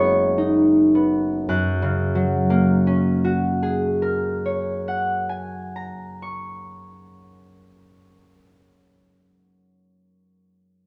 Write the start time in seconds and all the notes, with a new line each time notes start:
Already playing: F#1 F#2 F#3 G#3 A#3 B3 A#4 B4 C#5 D#5 A#5 C#6 D#6
0.38 D#4
0.95 B3
1.49 F#2 F#6
1.82 C#3
2.15 F#3
2.50 A#3
2.87 C#4
3.24 F#4
3.63 G#4
4.02 A#4
4.46 C#5
4.88 F#5
5.29 G#5
5.76 A#5
6.22 C#6